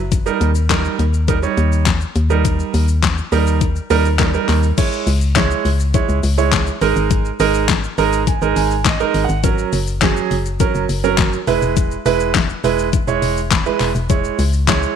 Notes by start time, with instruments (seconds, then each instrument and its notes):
Already playing: fm bass F#1
0.12 kick, closed hi-hat, shaker
0.26 grand piano G3 D#4 A#4, shaker
0.41 fm bass D#2, closed hi-hat, shaker
0.55 shaker
0.70 grand piano G3 D#4 A#4, kick, snare, clap, closed hi-hat, shaker
0.85 shaker
0.99 fm bass D#2, closed hi-hat, shaker
1.14 shaker
1.28 grand piano G3 D#4 A#4, kick, closed hi-hat, shaker
1.43 grand piano G3 D#4 C#5, shaker
1.57 fm bass D#2, closed hi-hat, shaker
1.72 shaker
1.86 kick, snare, clap, closed hi-hat, shaker
2.01 shaker
2.16 fm bass D#2, closed hi-hat, shaker
2.30 grand piano G3 D#4 A#4, shaker
2.45 kick, closed hi-hat, shaker
2.60 shaker
2.74 fm bass D#2, open hi-hat, shaker
2.88 shaker
3.03 kick, snare, clap, closed hi-hat, shaker
3.18 shaker
3.32 fm bass D#2, grand piano G3 D#4 A#4, open hi-hat, shaker
3.47 shaker
3.61 kick, closed hi-hat, shaker
3.76 shaker
3.90 fm bass D#2, grand piano G3 D#4 A#4, open hi-hat, shaker
4.05 shaker
4.19 grand piano G3 D#4 A#4, kick, snare, clap, closed hi-hat, shaker
4.34 grand piano G3 D#4 A#4, shaker
4.49 fm bass D#2, clap, open hi-hat, shaker
4.63 shaker
4.78 grand piano G#3 E4 C#5, kick, closed hi-hat, crash, shaker
4.92 shaker
5.07 fm bass C#2, open hi-hat, shaker
5.21 shaker
5.36 grand piano G#3 E4 C#5, kick, snare, clap, closed hi-hat, shaker
5.51 shaker
5.65 fm bass C#2, open hi-hat, shaker
5.80 shaker
5.94 grand piano G#3 E4 C#5, kick, closed hi-hat, shaker
6.09 fm bass C#2, shaker
6.23 fm bass C#2, open hi-hat, shaker
6.38 grand piano G#3 E4 C#5, shaker
6.52 kick, snare, clap, closed hi-hat, shaker
6.67 shaker
6.81 fm bass G#1, grand piano G#3 D#4 A#4, open hi-hat, shaker
6.96 fm bass G#1, shaker
7.11 kick, closed hi-hat, shaker
7.25 shaker
7.40 fm bass G#1, grand piano G#3 D#4 A#4, open hi-hat, shaker
7.54 shaker
7.69 kick, snare, clap, closed hi-hat, shaker
7.84 shaker
7.98 fm bass G#1, grand piano G#3 D#4 A#4 A#5, open hi-hat, shaker
8.13 shaker
8.27 grand piano G#5, kick, closed hi-hat, shaker
8.42 fm bass G#1, grand piano G#3 D#4 A#4, shaker
8.56 fm bass G#1, grand piano G#5, open hi-hat, shaker
8.71 shaker
8.85 grand piano D#5, kick, snare, clap, closed hi-hat, shaker
9.00 grand piano G#3 D#4 A#4, shaker
9.14 fm bass G#1, open hi-hat, shaker
9.24 grand piano F#5
9.29 fm bass G#1, shaker
9.44 grand piano F#3 C#4 A#4, kick, closed hi-hat, shaker
9.58 shaker
9.73 fm bass F#1, open hi-hat, shaker
9.87 shaker
10.02 grand piano F#3 C#4 G#4, kick, snare, clap, closed hi-hat, shaker
10.17 shaker
10.31 fm bass F#1, open hi-hat, shaker
10.46 shaker
10.60 grand piano F#3 C#4 A#4, kick, closed hi-hat, shaker
10.75 fm bass F#1, shaker
10.89 fm bass F#1, open hi-hat, shaker
11.04 grand piano F#3 C#4 A#4, shaker
11.18 kick, snare, clap, closed hi-hat, shaker
11.33 shaker
11.47 fm bass E1, grand piano G#3 E4 B4, open hi-hat, shaker
11.62 fm bass E1, shaker
11.77 kick, closed hi-hat, shaker
11.91 shaker
12.06 fm bass E1, grand piano G#3 E4 B4, open hi-hat, shaker
12.20 shaker
12.35 kick, snare, clap, closed hi-hat, shaker
12.50 shaker
12.64 fm bass E1, grand piano G#3 E4 B4, open hi-hat, shaker
12.79 shaker
12.93 kick, closed hi-hat, shaker
13.07 fm bass E1, grand piano G#3 E4 C#5, shaker
13.22 fm bass E1, open hi-hat, shaker
13.37 shaker
13.51 grand piano B5, kick, snare, clap, closed hi-hat, shaker
13.66 grand piano G#3 E4 B4, shaker
13.80 fm bass E1, clap, open hi-hat, shaker
13.95 fm bass E1, shaker
14.09 grand piano G#3 E4 C#5, kick, closed hi-hat, shaker
14.24 shaker
14.39 fm bass C#2, open hi-hat, shaker
14.53 shaker
14.68 grand piano G#3 E4 C#5, kick, snare, clap, closed hi-hat, shaker
14.83 shaker